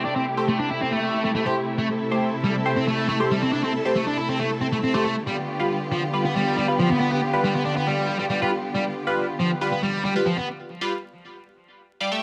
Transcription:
0.00 5.22 C3 medium
0.00 5.22 A3 medium
0.00 5.22 E4 medium
0.00 1.75 G4 medium
0.05 0.15 D4 medium
0.16 0.24 C4 medium
0.37 0.49 A3 medium
0.37 0.49 G4 medium
0.37 0.49 C5 medium
0.48 0.57 A3 medium
0.59 0.69 D4 medium
0.70 0.80 E4 medium
0.81 0.91 C4 medium
0.92 1.23 A3 medium
1.24 1.29 A3 medium
1.35 1.44 A3 medium
1.46 1.57 A3 medium
1.46 1.57 G4 medium
1.46 1.55 G4 medium
1.46 1.57 C5 medium
1.78 1.87 A3 medium
1.78 5.23 A4 medium
2.11 2.30 A3 medium
2.11 2.30 G4 medium
2.11 2.30 C5 medium
2.44 2.54 G3 medium
2.65 2.77 A3 medium
2.65 2.77 G4 medium
2.65 2.77 C5 loud
2.76 2.85 C4 medium
2.87 3.07 A3 medium
3.09 3.18 A3 medium
3.20 3.31 A3 medium
3.20 3.31 G4 medium
3.20 3.31 C5 medium
3.31 3.42 G3 medium
3.42 3.52 C4 medium
3.53 3.63 D4 medium
3.64 3.72 C4 medium
3.85 3.97 A3 medium
3.85 3.97 G4 medium
3.85 3.97 C5 loud
3.96 4.05 A3 medium
4.07 4.17 D4 medium
4.18 4.28 E4 medium
4.29 4.39 C4 medium
4.39 4.49 A3 medium
4.61 4.67 C4 medium
4.72 4.77 A3 medium
4.84 4.92 C4 medium
4.94 5.05 A3 medium
4.94 5.04 A3 medium
4.94 5.05 G4 medium
4.94 5.05 C5 medium
5.05 5.15 A3 medium
5.26 10.44 D3 medium
5.26 5.36 G3 medium
5.26 10.44 B3 medium
5.26 10.44 F4 medium
5.26 10.44 G4 medium
5.59 5.78 G3 medium
5.59 5.78 F4 medium
5.59 5.78 B4 medium
5.92 6.02 F3 medium
6.13 6.25 G3 medium
6.13 6.25 F4 medium
6.13 6.25 B4 medium
6.25 6.33 B3 medium
6.35 6.56 G3 medium
6.57 6.66 G3 medium
6.68 6.79 G3 medium
6.68 6.79 F4 medium
6.68 6.79 B4 medium
6.79 6.89 F3 medium
6.90 6.99 B3 medium
7.00 7.10 B3 medium
7.12 7.20 B3 medium
7.33 7.45 G3 medium
7.33 7.45 F4 medium
7.33 7.45 B4 loud
7.44 7.53 G3 loud
7.55 7.65 B3 medium
7.65 7.75 D4 medium
7.77 7.87 B3 medium
7.87 8.18 G3 medium
8.19 8.25 G3 medium
8.30 8.39 G3 medium
8.42 8.53 G3 medium
8.42 8.53 F4 medium
8.42 8.50 F4 medium
8.42 8.53 B4 medium
8.74 8.83 G3 medium
9.07 9.25 G3 medium
9.07 9.25 F4 medium
9.07 9.25 B4 medium
9.39 9.50 F3 medium
9.61 9.73 G3 medium
9.61 9.73 F4 medium
9.61 9.73 B4 medium
9.72 9.81 B3 medium
9.83 10.04 G3 medium
10.05 10.14 G3 medium
10.16 10.27 G3 medium
10.16 10.27 F4 medium
10.16 10.27 B4 medium
10.26 10.37 F3 medium
10.37 10.47 B3 medium
10.81 10.93 G3 medium
10.81 10.93 F4 medium
10.81 10.93 B4 medium
12.00 12.10 G3 medium
12.00 12.10 F4 medium
12.00 12.10 D5 medium
12.11 12.23 A3 medium
12.11 12.23 G4 medium
12.11 12.23 E5 medium

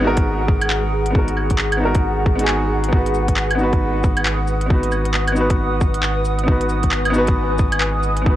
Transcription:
0.00 2.91 G#1 medium
0.00 1.11 B3 loud
0.00 0.02 D#4 medium
0.00 1.12 D#4 medium
0.00 0.04 F#4 medium
0.00 2.89 G#4 medium
0.00 0.07 A#4 medium
0.00 6.45 F#5 medium
0.04 1.13 F#4 medium
0.04 1.14 A#4 loud
0.17 kick loud
0.17 closed hi-hat medium
0.48 kick loud
0.61 closed hi-hat medium
0.61 claves medium
0.70 clap loud
1.06 closed hi-hat medium
1.11 1.76 B3 medium
1.11 1.79 D#4 medium
1.15 1.80 F#4 medium
1.15 1.81 A#4 medium
1.15 kick loud
1.28 closed hi-hat soft
1.37 claves soft
1.50 kick medium
1.50 closed hi-hat medium
1.58 clap loud
1.72 closed hi-hat soft
1.72 claves medium
1.77 2.34 B3 medium
1.77 2.36 D#4 medium
1.83 2.38 F#4 medium
1.83 2.39 A#4 medium
1.95 kick loud
1.95 closed hi-hat medium
2.26 kick loud
2.36 2.87 B3 medium
2.36 2.90 D#4 medium
2.36 closed hi-hat medium
2.41 2.91 F#4 medium
2.41 2.93 G#4 loud
2.48 clap loud
2.84 closed hi-hat medium
2.89 3.54 B3 medium
2.89 3.56 D#4 medium
2.93 8.36 G#1 medium
2.93 3.58 F#4 medium
2.93 8.36 B4 medium
2.93 8.36 D#6 medium
2.93 kick loud
2.97 3.59 B4 medium
3.06 closed hi-hat soft
3.15 cabasa medium
3.28 kick medium
3.28 closed hi-hat medium
3.37 clap loud
3.51 closed hi-hat soft
3.51 claves medium
3.55 4.65 B3 medium
3.55 4.68 D#4 medium
3.59 4.69 F#4 medium
3.59 cabasa medium
3.63 4.70 B4 loud
3.73 kick loud
3.73 closed hi-hat medium
4.04 kick loud
4.04 cabasa medium
4.17 closed hi-hat medium
4.17 claves medium
4.26 clap loud
4.48 cabasa medium
4.61 closed hi-hat medium
4.66 5.31 B3 medium
4.66 5.33 D#4 medium
4.70 5.36 F#4 medium
4.70 5.37 B4 medium
4.70 kick loud
4.83 closed hi-hat soft
4.92 cabasa medium
4.92 claves soft
5.06 closed hi-hat medium
5.14 clap loud
5.28 closed hi-hat soft
5.28 claves medium
5.32 6.42 B3 medium
5.32 6.45 D#4 medium
5.36 6.47 F#4 medium
5.36 cabasa medium
5.41 6.48 B4 medium
5.50 kick loud
5.50 closed hi-hat medium
5.81 kick loud
5.81 cabasa medium
5.94 closed hi-hat medium
6.03 clap loud
6.25 cabasa medium
6.39 closed hi-hat medium
6.43 7.09 B3 medium
6.43 7.11 D#4 medium
6.48 7.13 F#4 medium
6.48 7.15 B4 medium
6.48 8.36 G#5 medium
6.48 kick loud
6.61 closed hi-hat soft
6.69 cabasa medium
6.83 kick medium
6.83 closed hi-hat medium
6.91 clap loud
7.05 closed hi-hat soft
7.05 claves medium
7.10 8.20 B3 loud
7.10 8.23 D#4 medium
7.10 cabasa medium
7.16 8.24 F#4 medium
7.16 8.26 B4 loud
7.27 kick loud
7.27 closed hi-hat medium
7.58 kick loud
7.58 cabasa medium
7.72 closed hi-hat medium
7.72 claves medium
7.80 clap loud
8.03 cabasa medium
8.16 closed hi-hat medium
8.22 8.36 B3 medium
8.22 8.36 D#4 medium
8.26 8.36 F#4 medium
8.26 8.36 B4 medium
8.26 kick loud

